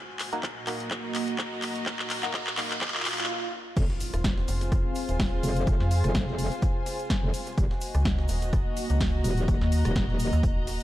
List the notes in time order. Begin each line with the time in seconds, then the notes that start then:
Already playing: A#3 F#4 C5 D#5 G#5, riser
0.19 clap, open hi-hat
0.33 A#3 D#4 F#4 A#4, closed hi-hat
0.43 kick, clap, closed hi-hat
0.49 D#5
0.67 A#3 D#4 F#4 A#4, clap, open hi-hat
0.80 closed hi-hat
0.91 A#5, kick, clap, closed hi-hat
1.15 clap, open hi-hat
1.28 closed hi-hat
1.39 kick, clap, closed hi-hat
1.62 clap, open hi-hat
1.76 closed hi-hat
1.86 kick, clap, closed hi-hat
1.99 clap
2.10 clap, open hi-hat
2.23 A#3 D#4 F#4 A#4, clap, closed hi-hat
2.34 kick, clap, closed hi-hat
2.47 clap
2.58 A#3 D#4 F#4 A#4, clap, open hi-hat
2.71 clap, closed hi-hat
2.81 kick, clap, closed hi-hat, swell
2.88 clap
2.95 clap
3.00 clap
3.05 clap, open hi-hat
3.12 clap
3.18 clap, closed hi-hat
3.24 clap
3.77 F1 C4 F4 G#4 F5, kick, closed hi-hat, crash, tambourine, impact, shaker
3.90 snare
4.00 open hi-hat, tambourine, shaker
4.13 D#1 C5, cross-stick, closed hi-hat, shaker
4.24 kick, snare, closed hi-hat, tambourine, shaker
4.37 snare
4.44 G#5
4.48 F1, snare, open hi-hat, tambourine, shaker
4.61 snare, closed hi-hat, shaker
4.72 kick, cross-stick, closed hi-hat, tambourine, shaker
4.95 open hi-hat, tambourine, shaker
5.08 D#1, closed hi-hat, shaker
5.20 kick, snare, closed hi-hat, open hi-hat, shaker
5.43 F1, open hi-hat, tambourine, shaker
5.56 closed hi-hat, shaker
5.67 F1, kick, closed hi-hat, tambourine, shaker
5.80 F2, snare
5.91 open hi-hat, tambourine, shaker
6.04 F1, cross-stick, closed hi-hat, shaker
6.15 kick, snare, closed hi-hat, tambourine, shaker
6.28 snare
6.39 open hi-hat, tambourine, shaker
6.52 snare, closed hi-hat, shaker
6.62 kick, closed hi-hat, tambourine, shaker
6.86 snare, open hi-hat, tambourine, shaker
6.99 closed hi-hat, shaker
7.10 kick, snare, closed hi-hat, tambourine, shaker
7.23 F1
7.34 open hi-hat, tambourine, shaker
7.47 snare, closed hi-hat, shaker
7.58 D#1 A#3 F#4 D#5, kick, closed hi-hat, tambourine, shaker
7.71 snare
7.81 open hi-hat, tambourine, shaker
7.94 C#2, cross-stick, closed hi-hat, shaker
8.02 D#5, kick, snare, closed hi-hat, tambourine, shaker
8.10 A#5
8.18 snare
8.28 D#1, snare, open hi-hat, tambourine, shaker
8.42 snare, closed hi-hat, shaker
8.53 kick, cross-stick, closed hi-hat, tambourine, shaker
8.77 open hi-hat, tambourine, shaker
8.90 C#2, closed hi-hat, shaker
9.00 kick, snare, closed hi-hat, open hi-hat, shaker
9.24 D#1, open hi-hat, tambourine, shaker
9.37 closed hi-hat, shaker
9.48 D#1, kick, closed hi-hat, tambourine, shaker
9.61 D#2, snare
9.72 open hi-hat, tambourine, shaker
9.85 D#1, cross-stick, closed hi-hat, shaker
9.96 kick, snare, closed hi-hat, tambourine, shaker
10.09 snare
10.19 open hi-hat, tambourine, shaker
10.33 D#2, snare, closed hi-hat, shaker
10.43 D#1, kick, closed hi-hat, tambourine, shaker
10.67 snare, open hi-hat, tambourine, shaker